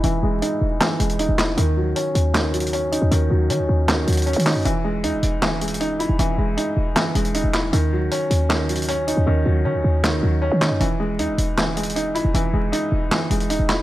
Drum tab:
HH |x-----------------------x-----------------------------------x-----x-----x-----------------------|x-----------------------x-----------x-----------------------x---x---x---x-----------x-----------|x-----------------------x-----------------------------------x--x--x--x--x---x---x---o-----------|x-----------------------x-----------x-----------------------x---x---x---x-----------x-----------|
CP |------------------------------------------------x-----------------------------------x-----------|------------------------------------------------x-----------------------------------------------|------------------------------------------------x-----------------------------------x-----------|------------------------------------------------x-----------------------------------------------|
SD |------------------------------------------------o-----------------------------------o-----------|------------------------------------------------o-----------------------------------------------|------------------------------------------------o-----------------------------------o-----------|------------------------------------------------o-----------------------------------------------|

HH |x-----------------------x-----------------------------------x-----x-----x-----------------------|x-----------------------x-----------x-----------------------x---x---x---x-----------x-----------|------------------------------------------------------------------------------------------------|x-----------------------x-----------x-----------------------x---x---x---x-----------x-----------|
CP |------------------------------------------------x-----------------------------------x-----------|------------------------------------------------x-----------------------------------------------|------------------------------------------------x-----------------------------------x-----------|------------------------------------------------x-----------------------------------------------|
SD |------------------------------------------------o-----------------------------------o-----------|------------------------------------------------o-----------------------------------------------|------------------------------------------------o-----------------------------------o-----------|------------------------------------------------o-----------------------------------------------|

HH |x-----------------------x-----------------------------------x-----x-----x-----------------------|
CP |------------------------------------------------x-----------------------------------x-----------|
SD |------------------------------------------------o-----------------------------------o-----------|